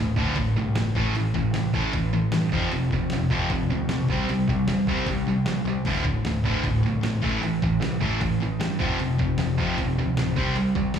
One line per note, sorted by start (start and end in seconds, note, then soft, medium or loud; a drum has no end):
0.00 0.14 D1 medium
0.00 0.15 D2 medium
0.00 0.15 A2 medium
0.16 0.34 D2 medium
0.16 0.36 D2 medium
0.16 0.36 A2 medium
0.16 0.37 D3 loud
0.16 kick medium
0.35 0.53 D1 medium
0.35 0.55 D2 medium
0.35 0.55 A2 medium
0.35 kick loud
0.35 open hi-hat soft
0.56 0.73 C2 medium
0.56 0.75 D2 medium
0.56 0.75 A2 medium
0.74 0.92 G1 medium
0.74 0.94 D2 medium
0.74 0.94 A2 medium
0.74 snare loud
0.74 open hi-hat medium
0.95 1.12 A1 medium
0.95 1.14 A2 medium
0.95 1.14 E3 loud
0.95 1.14 A3 loud
0.95 kick loud
1.13 1.31 A1 medium
1.13 1.33 A2 medium
1.13 1.33 E3 medium
1.13 open hi-hat medium
1.34 1.51 A1 medium
1.34 1.52 A2 medium
1.34 1.52 E3 medium
1.34 kick medium
1.52 1.70 C2 medium
1.52 1.72 A2 medium
1.52 1.73 E3 medium
1.52 snare loud
1.52 open hi-hat medium
1.73 1.90 A1 medium
1.73 1.92 A2 loud
1.73 1.93 E3 loud
1.73 1.93 A3 loud
1.73 kick medium
1.93 2.27 A1 medium
1.93 2.11 A2 medium
1.93 2.11 E3 medium
1.93 kick loud
1.93 open hi-hat medium
2.13 2.31 A2 medium
2.13 2.31 E3 medium
2.32 2.50 G2 medium
2.32 2.50 A2 medium
2.32 2.50 E3 medium
2.32 snare loud
2.32 open hi-hat medium
2.51 2.68 F1 medium
2.51 2.71 F2 medium
2.51 2.71 C3 loud
2.51 2.72 F3 loud
2.51 kick loud
2.72 3.05 F1 medium
2.72 2.90 F2 medium
2.72 2.90 C3 medium
2.72 open hi-hat medium
2.91 3.10 F2 medium
2.91 3.10 C3 medium
2.91 kick medium
3.10 3.28 F1 loud
3.10 3.29 F2 medium
3.10 3.30 C3 medium
3.10 snare loud
3.10 open hi-hat medium
3.29 3.47 F2 medium
3.29 3.49 F2 medium
3.29 3.50 C3 loud
3.29 3.50 F3 loud
3.29 kick medium
3.50 3.67 F1 loud
3.50 3.69 F2 medium
3.50 3.69 C3 medium
3.50 kick loud
3.50 open hi-hat soft
3.70 3.87 D2 medium
3.70 3.88 F2 medium
3.70 3.88 C3 medium
3.89 4.06 B1 medium
3.89 4.08 F2 medium
3.89 4.08 C3 medium
3.89 snare loud
3.89 open hi-hat medium
4.08 4.26 C2 medium
4.08 4.29 C3 medium
4.08 4.29 G3 medium
4.08 kick loud
4.13 4.29 C4 loud
4.27 4.44 C2 medium
4.27 4.47 C3 medium
4.27 open hi-hat medium
4.31 4.48 G3 medium
4.48 4.65 C2 loud
4.48 4.67 C3 medium
4.48 4.67 G3 medium
4.48 kick medium
4.66 4.84 E1 medium
4.66 4.86 C3 medium
4.66 4.86 G3 medium
4.66 snare loud
4.66 open hi-hat medium
4.87 5.04 C2 loud
4.87 5.06 C3 medium
4.87 5.06 G3 loud
4.87 5.07 C4 loud
4.87 kick medium
5.06 5.40 C2 medium
5.06 5.25 C3 medium
5.06 5.25 G3 medium
5.06 kick medium
5.06 open hi-hat medium
5.27 5.44 C3 medium
5.27 5.45 G3 medium
5.44 5.62 A#1 loud
5.44 5.64 C3 medium
5.44 5.64 G3 medium
5.44 snare loud
5.44 open hi-hat medium
5.65 5.82 C2 medium
5.65 5.83 C3 medium
5.65 5.83 G3 medium
5.84 6.18 D1 medium
5.84 6.03 D2 medium
5.84 6.03 A2 medium
5.84 6.05 D3 medium
5.84 kick loud
5.84 open hi-hat medium
6.04 6.23 D2 medium
6.04 6.22 A2 medium
6.04 kick medium
6.23 6.41 D1 medium
6.23 6.43 D2 medium
6.23 6.43 A2 medium
6.23 snare loud
6.23 open hi-hat medium
6.44 6.61 D2 medium
6.44 6.63 D2 medium
6.44 6.62 A2 medium
6.44 6.63 D3 loud
6.44 kick medium
6.63 6.80 D1 medium
6.63 6.82 D2 medium
6.63 6.81 A2 medium
6.63 kick loud
6.63 open hi-hat medium
6.81 6.99 C2 medium
6.81 7.00 D2 medium
6.81 7.01 A2 medium
7.01 7.23 A#1 medium
7.01 7.20 D2 medium
7.01 7.20 A2 medium
7.01 snare loud
7.01 open hi-hat medium
7.22 7.40 A1 medium
7.22 7.41 A2 loud
7.22 7.41 E3 loud
7.22 7.41 A3 loud
7.22 kick loud
7.41 7.58 A1 medium
7.41 7.60 A2 medium
7.41 7.60 E3 medium
7.41 open hi-hat medium
7.62 7.79 A1 medium
7.62 7.80 A2 medium
7.62 7.80 E3 medium
7.62 kick medium
7.81 7.98 C2 medium
7.81 7.99 A2 medium
7.81 8.00 E3 medium
7.81 snare loud
7.81 open hi-hat medium
8.01 8.18 A1 loud
8.01 8.20 A2 medium
8.01 8.20 E3 loud
8.01 8.21 A3 loud
8.01 kick medium
8.21 8.54 A1 medium
8.21 8.39 A2 medium
8.21 8.39 E3 medium
8.21 kick loud
8.21 open hi-hat medium
8.40 8.58 A2 medium
8.40 8.59 E3 medium
8.59 8.76 G2 medium
8.59 8.78 A2 medium
8.59 8.78 E3 medium
8.59 snare loud
8.59 open hi-hat medium
8.79 8.97 F1 medium
8.79 8.98 F2 medium
8.79 8.98 C3 loud
8.79 8.99 F3 medium
8.79 kick loud
8.99 9.33 F1 medium
8.99 9.17 F2 medium
8.99 9.17 C3 medium
8.99 open hi-hat medium
9.19 9.36 F2 medium
9.19 9.37 C3 medium
9.19 kick medium
9.38 9.55 F1 loud
9.38 9.57 F2 medium
9.38 9.57 C3 medium
9.38 snare loud
9.38 open hi-hat medium
9.58 9.75 F2 loud
9.58 9.77 F2 medium
9.58 9.77 C3 loud
9.58 9.78 F3 medium
9.58 kick medium
9.78 9.95 F1 loud
9.78 9.96 F2 medium
9.78 9.96 C3 medium
9.78 kick loud
9.78 open hi-hat medium
9.96 10.13 D2 medium
9.96 10.16 F2 medium
9.96 10.16 C3 medium
10.16 10.33 D1 medium
10.16 10.35 F2 medium
10.16 10.36 C3 medium
10.16 snare loud
10.16 open hi-hat medium
10.36 10.53 C2 medium
10.36 10.55 C3 medium
10.36 10.56 G3 loud
10.36 10.56 C4 loud
10.36 kick loud
10.56 10.73 C2 medium
10.56 10.74 C3 medium
10.56 10.74 G3 medium
10.56 open hi-hat medium
10.75 10.92 C2 medium
10.75 10.93 C3 medium
10.75 10.93 G3 medium
10.75 kick medium
10.94 10.99 E1 medium
10.94 10.99 C3 medium
10.94 10.99 G3 medium
10.94 snare loud
10.94 open hi-hat medium